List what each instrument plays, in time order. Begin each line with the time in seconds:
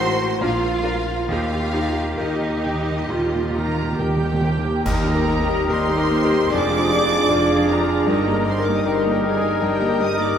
Already playing: double bass section A1, grand piano A2, cello section F#4, violin section C5 C6
0.00 viola section D#4 F#4, grand piano F#4 C5
0.41 double bass section A#1, grand piano A#2, viola section D4 F4, violin section F4 F5, cello section F4
0.83 viola section D4 F4, grand piano F4 A#4
1.29 grand piano D#2, double bass section D#2, timpani D#3, viola section D#4 G4, violin section F4 F5, cello section G4
1.65 timpani D#3
1.72 grand piano D#4, viola section D#4 G4
2.06 timpani D#3
2.14 timpani D#3, grand piano A#4
2.19 double bass section D#2, timpani D#3, viola section D#4, violin section D#4 D#5
2.40 timpani D#3
2.49 timpani D#3
2.57 timpani D#3
2.64 timpani D#3, grand piano G5
2.74 timpani D#3
2.82 timpani D#3
2.90 timpani D#3
3.00 timpani D#3
3.09 double bass section D#2, grand piano A#2, timpani D#3, viola section F4
3.18 timpani D#3
3.26 timpani D#3
3.35 timpani D#3
3.42 timpani D#3
3.50 timpani D#3, violin section A#5
3.55 timpani D#3, grand piano D#4, flute section A#4
3.67 timpani D#3
3.75 timpani D#3
3.83 timpani D#3
3.91 timpani D#3
3.98 double bass section D#2, timpani D#3, viola section G4, flute section G4, grand piano A#4, violin section G5
4.09 timpani D#3
4.17 timpani D#3
4.24 timpani D#3
4.33 timpani D#3
4.41 timpani D#3, grand piano G5
4.49 timpani D#3
4.57 timpani D#3
4.66 timpani D#3
4.73 timpani D#3
4.85 grand piano D#2, cello section D#2, double bass section D#2, timpani D#3, french horn section G3 D#4, viola section A#3 D#4, clarinet G4, violin section A#4 A#5, flute section A#4, trumpet A#4, oboe D#5, concert bass drum, crash
5.06 viola section G3 A#3, violin section G4 D#5
5.14 grand piano D#4 G4 A#4
5.26 viola section A#3 D#4, violin section A#4
5.41 grand piano D#4 G4 A#4
5.46 viola section G3 A#3, violin section G4 D#5
5.66 cello section D#2, double bass section D#2, viola section A#3 D#4, grand piano D#4 G4 A#4, violin section A#4, flute section C5
5.71 violin section C6
5.88 viola section G3 A#3, violin section G4 D#5
5.97 grand piano D#4 G4 A#4
6.08 viola section A#3 D#4, violin section A#4
6.23 grand piano D#4 G4 A#4
6.30 viola section G3 A#3, violin section G4 D#5
6.49 double bass section F1, grand piano F2, cello section F2, viola section F3 D4, french horn section G#3 D4, violin section D4 G#4 D6, clarinet G#4, trumpet G#4, flute section D5, oboe D5
6.70 viola section G#3 F4, violin section F4
6.78 grand piano D4 F4 G#4
6.90 viola section F3 D4, violin section D4 G#4
7.04 grand piano D4 F4 G#4
7.10 viola section G#3 F4, violin section F4
7.29 double bass section F1, cello section F2, viola section F3 D4, grand piano D4 F4 G#4, violin section D4 G#4
7.49 viola section G#3 F4, violin section F4
7.55 grand piano D4 F4 G#4
7.67 viola section F3, violin section D4 G#4 A#5, flute section A#4
7.72 viola section D4
7.80 grand piano D4 F4 G#4
7.87 viola section G#3 F4, violin section F4
8.07 double bass section G1, grand piano G2, cello section G2, viola section G3 D#4, french horn section D#4, violin section G4, trumpet A#4, clarinet A#4, oboe D#5
8.27 viola section A#3 G4, violin section D#4 A#4
8.33 grand piano D#4 A#4
8.47 viola section G3 D#4, violin section G4 C6, flute section C5
8.59 grand piano D#4 A#4
8.64 viola section A#3 G4, violin section D#4 A#4 D6, flute section D5
8.74 flute section D#5, violin section D#6
8.82 double bass section G1, cello section G2, french horn section G3, viola section G3 D#4, grand piano D#4 A#4, violin section G4 D6, flute section D5
8.93 flute section C5, violin section C6
9.00 flute section A#4, violin section A#5
9.05 viola section A#3 G4, violin section D#4 A#4
9.11 grand piano D#4 A#4, flute section G4, violin section G5
9.23 viola section G3 D#4, violin section G4 G#5, flute section G#4
9.37 grand piano D#4 A#4
9.42 viola section A#3 G4, violin section D#4 A#4
9.60 double bass section G1, cello section G2, grand piano G2, viola section G3 D#4, violin section G4 G5, flute section G4
9.78 viola section A#3 G4, violin section D#4 A#4
9.88 grand piano D#4 A#4
9.98 viola section G3 D#4, violin section G4, flute section D#5
10.03 violin section D#6
10.14 grand piano D#4 A#4, violin section D#4 A#4, flute section D5
10.19 viola section A#3 G4, violin section D6